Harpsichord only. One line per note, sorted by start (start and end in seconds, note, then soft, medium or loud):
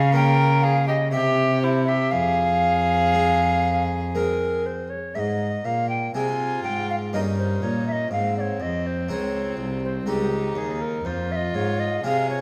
0.00 1.08 C#3 medium
0.13 0.84 A#3 soft
0.13 0.85 F4 soft
1.11 2.08 C3 medium
1.11 2.09 C4 soft
2.12 4.91 F2 medium
3.13 3.86 G#3 soft
3.13 3.86 C4 soft
4.15 4.87 G#3 soft
4.15 4.87 C4 soft
5.16 5.61 G#2 soft
5.65 6.10 A#2 soft
6.14 6.60 C3 soft
6.14 6.85 G#3 soft
6.14 6.86 C4 soft
6.64 7.09 G#2 soft
7.13 7.58 G2 soft
7.13 8.07 A#3 soft
7.13 8.08 C#4 soft
7.13 8.08 D#4 soft
7.62 8.07 A#2 soft
8.11 8.56 G#2 soft
8.60 9.05 F2 soft
9.09 9.54 C#2 soft
9.09 9.79 G#3 soft
9.09 9.80 C4 soft
9.09 9.80 D#4 soft
9.57 10.02 C2 soft
10.06 10.52 C#2 soft
10.06 10.78 G#3 soft
10.06 10.78 C4 soft
10.06 10.78 D#4 soft
10.56 11.01 D#2 soft
11.05 11.51 F2 soft
11.54 12.00 G#2 soft
12.04 12.41 C3 soft
12.04 12.39 G#3 soft
12.04 12.39 C4 soft
12.04 12.41 F4 soft